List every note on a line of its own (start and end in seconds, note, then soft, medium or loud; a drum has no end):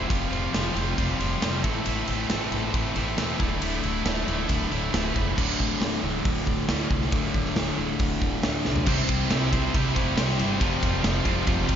0.00 0.11 C5 medium
0.07 0.29 F1 medium
0.07 0.52 F2 medium
0.07 0.53 C3 medium
0.07 0.31 F3 medium
0.07 0.30 G3 medium
0.07 0.31 C4 medium
0.07 0.29 F4 loud
0.07 kick loud
0.07 ride medium
0.30 0.50 F1 medium
0.30 0.51 F3 medium
0.30 0.52 G3 medium
0.30 0.53 C4 medium
0.30 0.53 F4 medium
0.30 ride medium
0.52 0.72 F1 medium
0.52 0.74 F3 medium
0.52 0.74 G3 medium
0.52 0.73 C4 medium
0.52 0.72 F4 medium
0.52 snare loud
0.52 ride medium
0.74 0.94 F1 medium
0.74 1.20 F2 medium
0.74 1.20 C3 medium
0.74 0.96 F3 medium
0.74 0.96 G3 medium
0.74 0.98 C4 medium
0.74 0.98 F4 medium
0.74 ride medium
0.97 1.17 F1 medium
0.97 1.41 F2 medium
0.97 1.41 C3 medium
0.97 1.19 F3 medium
0.97 1.19 G3 medium
0.97 1.18 C4 medium
0.97 1.18 F4 medium
0.97 kick loud
0.97 ride loud
1.19 1.38 F1 medium
1.19 1.63 F2 medium
1.19 1.63 C3 medium
1.19 1.39 F3 medium
1.19 1.40 G3 medium
1.19 1.40 C4 medium
1.19 1.41 F4 medium
1.19 ride medium
1.40 1.61 F1 medium
1.40 1.62 F3 medium
1.40 1.62 G3 medium
1.40 1.62 C4 medium
1.40 1.62 F4 medium
1.40 snare loud
1.40 ride loud
1.62 1.83 A1 medium
1.62 1.83 A2 medium
1.62 1.83 E3 medium
1.62 1.84 A3 medium
1.62 1.83 C4 medium
1.62 1.85 E4 medium
1.62 1.85 A4 medium
1.62 kick loud
1.62 ride medium
1.84 2.05 A1 medium
1.84 2.29 A2 medium
1.84 2.53 E3 medium
1.84 2.09 A3 loud
1.84 2.08 C4 medium
1.84 2.07 E4 loud
1.84 2.07 A4 loud
1.84 ride loud
2.07 2.27 A1 medium
2.07 2.29 A3 medium
2.07 2.29 C4 medium
2.07 2.30 E4 medium
2.07 2.31 A4 medium
2.07 ride medium
2.29 2.49 A1 medium
2.29 2.53 A3 medium
2.29 2.51 C4 medium
2.29 2.52 E4 medium
2.29 2.51 A4 medium
2.29 snare loud
2.29 ride medium
2.52 2.71 A1 medium
2.52 2.96 A2 medium
2.52 2.98 E3 medium
2.52 2.73 A3 medium
2.52 2.73 C4 medium
2.52 2.75 E4 medium
2.52 2.76 A4 medium
2.52 ride medium
2.74 2.93 A1 loud
2.74 3.18 A2 loud
2.74 3.41 E3 loud
2.74 2.97 A3 medium
2.74 2.96 C4 medium
2.74 2.96 E4 medium
2.74 2.96 A4 medium
2.74 kick loud
2.74 ride loud
2.96 3.15 A1 medium
2.96 3.39 A2 medium
2.96 3.41 E3 medium
2.96 3.17 A3 medium
2.96 3.16 C4 medium
2.96 3.18 E4 medium
2.96 3.19 A4 medium
2.96 ride medium
3.17 3.37 E1 medium
3.17 3.40 A3 medium
3.17 3.38 C4 medium
3.17 3.40 E4 medium
3.17 3.39 A4 medium
3.17 snare loud
3.17 ride medium
3.40 3.59 D1 medium
3.40 3.60 D2 medium
3.40 3.61 A2 medium
3.40 3.61 D3 medium
3.40 3.61 A3 medium
3.40 3.62 E4 medium
3.40 kick loud
3.40 ride medium
3.61 3.81 D1 medium
3.61 4.05 D2 medium
3.61 4.03 A2 medium
3.61 3.84 D3 medium
3.61 3.83 A3 medium
3.61 3.82 E4 medium
3.61 ride medium
3.83 4.03 D1 medium
3.83 4.04 D3 medium
3.83 4.05 A3 medium
3.83 4.06 E4 medium
3.83 ride medium
4.05 4.24 D1 medium
4.05 4.27 A2 medium
4.05 4.27 D3 medium
4.05 4.26 A3 medium
4.05 4.26 E4 medium
4.05 snare loud
4.05 ride medium
4.27 4.47 D1 medium
4.27 4.72 D2 medium
4.27 4.47 A2 medium
4.27 4.48 D3 medium
4.27 4.49 A3 medium
4.27 4.49 E4 medium
4.27 ride medium
4.48 4.69 D1 medium
4.48 4.92 D2 medium
4.48 4.71 A2 medium
4.48 4.70 D3 medium
4.48 4.70 A3 medium
4.48 4.70 E4 medium
4.48 kick loud
4.48 ride loud
4.71 4.90 D1 medium
4.71 5.16 D2 medium
4.71 4.91 A2 medium
4.71 4.92 D3 medium
4.71 4.92 A3 medium
4.71 4.93 E4 medium
4.71 ride medium
4.92 5.12 D1 medium
4.92 5.35 A2 medium
4.92 5.16 D3 medium
4.92 5.15 A3 medium
4.92 5.14 E4 medium
4.92 snare loud
4.92 ride medium
5.15 5.34 F1 medium
5.15 5.37 D3 medium
5.15 5.36 A3 medium
5.15 5.36 E4 medium
5.15 kick medium
5.15 ride medium
5.36 5.52 D1 medium
5.36 6.04 D2 medium
5.36 6.02 A2 medium
5.36 6.02 D3 loud
5.36 kick loud
5.36 crash loud
5.60 5.74 D1 medium
5.60 kick medium
5.80 5.95 D1 medium
5.80 snare medium
5.80 open hi-hat medium
6.02 6.18 D1 medium
6.02 6.67 D2 medium
6.02 6.67 A2 medium
6.02 6.67 D3 medium
6.25 6.40 D1 medium
6.25 kick loud
6.25 open hi-hat medium
6.47 6.62 D1 medium
6.47 kick medium
6.69 6.83 D2 medium
6.69 7.10 D2 medium
6.69 7.11 A2 medium
6.69 7.12 D3 medium
6.69 snare loud
6.69 open hi-hat medium
6.90 7.05 C2 medium
6.90 kick medium
7.02 snare soft
7.11 7.27 D1 medium
7.11 7.76 D2 medium
7.11 7.77 A2 medium
7.11 7.76 D3 loud
7.11 kick loud
7.11 open hi-hat medium
7.34 7.49 D1 medium
7.34 kick medium
7.45 snare soft
7.56 7.70 D1 medium
7.56 snare loud
7.56 open hi-hat medium
7.77 7.92 D1 medium
7.77 8.41 D2 medium
7.77 8.42 A2 medium
7.77 8.41 D3 medium
7.99 8.14 D1 medium
7.99 kick loud
7.99 open hi-hat medium
8.22 8.36 D1 medium
8.22 kick medium
8.42 8.85 D2 medium
8.42 8.58 D2 medium
8.42 8.85 A2 medium
8.42 8.86 D3 medium
8.42 snare loud
8.42 open hi-hat medium
8.65 8.80 C2 medium
8.65 snare medium
8.76 floor tom medium
8.86 9.05 C2 loud
8.86 9.52 C3 medium
8.86 9.29 C3 medium
8.86 10.16 G3 medium
8.86 9.30 G3 loud
8.86 9.29 C4 medium
8.86 9.31 C4 loud
8.86 9.29 E4 loud
8.86 9.31 G4 medium
8.86 9.31 C5 loud
8.86 kick loud
8.86 crash loud
9.09 9.26 C2 medium
9.09 kick medium
9.09 ride medium
9.29 9.65 C2 medium
9.29 9.51 C3 medium
9.29 9.51 G3 medium
9.29 9.97 C4 medium
9.29 9.53 C4 medium
9.29 9.95 E4 medium
9.29 9.95 G4 medium
9.29 9.95 C5 medium
9.29 snare loud
9.29 ride loud
9.52 9.73 C3 medium
9.52 9.73 G3 loud
9.52 9.74 C4 medium
9.52 9.74 E4 medium
9.52 9.75 G4 medium
9.52 9.76 C5 medium
9.52 kick medium
9.52 ride medium
9.73 9.92 C2 loud
9.73 10.17 C3 loud
9.73 10.16 C3 loud
9.73 10.18 G3 loud
9.73 10.17 G3 loud
9.73 9.98 C4 loud
9.73 10.18 C4 loud
9.73 9.96 E4 loud
9.73 9.95 G4 loud
9.73 9.94 C5 loud
9.73 kick loud
9.73 ride loud
9.95 10.13 F1 medium
9.95 10.16 C4 medium
9.95 10.16 E4 medium
9.95 10.17 G4 medium
9.95 10.18 C5 medium
9.95 kick loud
9.95 ride medium
10.16 10.35 C2 loud
10.16 10.59 C3 medium
10.16 10.37 C3 medium
10.16 10.59 G3 medium
10.16 10.38 G3 medium
10.16 10.40 C4 medium
10.16 10.38 E4 medium
10.16 10.37 G4 loud
10.16 10.37 C5 loud
10.16 snare loud
10.16 ride loud
10.38 10.61 G1 medium
10.38 10.59 C3 medium
10.38 10.60 G3 medium
10.38 10.60 C4 medium
10.38 10.61 C4 medium
10.38 10.60 E4 medium
10.38 10.59 G4 medium
10.38 10.61 C5 medium
10.38 ride medium
10.60 10.79 F1 medium
10.60 11.26 F2 medium
10.60 11.02 F2 loud
10.60 11.26 C3 medium
10.60 11.03 C3 loud
10.60 11.01 F3 loud
10.60 11.04 F3 loud
10.60 11.01 G3 medium
10.60 11.03 C4 medium
10.60 11.03 F4 medium
10.60 kick loud
10.60 ride loud
10.83 11.00 F1 medium
10.83 kick loud
10.83 ride medium
11.02 11.22 F1 loud
11.02 11.24 F2 medium
11.02 11.24 C3 loud
11.02 11.68 F3 medium
11.02 11.25 F3 loud
11.02 11.68 G3 medium
11.02 11.67 C4 medium
11.02 11.66 F4 medium
11.02 snare loud
11.02 ride loud
11.25 11.43 F1 medium
11.25 11.46 F2 medium
11.25 11.46 C3 loud
11.25 11.47 F3 loud
11.25 11.45 F3 medium
11.25 11.46 G3 medium
11.25 11.47 C4 medium
11.25 11.47 F4 medium
11.25 kick medium
11.25 ride medium
11.45 11.65 F1 loud
11.45 11.76 F2 loud
11.45 11.76 C3 loud
11.45 11.69 F3 loud
11.45 11.76 F3 loud
11.45 11.68 G3 loud
11.45 11.67 C4 loud
11.45 11.66 F4 loud
11.45 kick loud
11.45 ride loud
11.67 11.76 F1 medium
11.67 11.76 F3 medium
11.67 11.76 G3 medium
11.67 11.76 C4 medium
11.67 11.76 F4 medium
11.67 kick medium
11.67 ride medium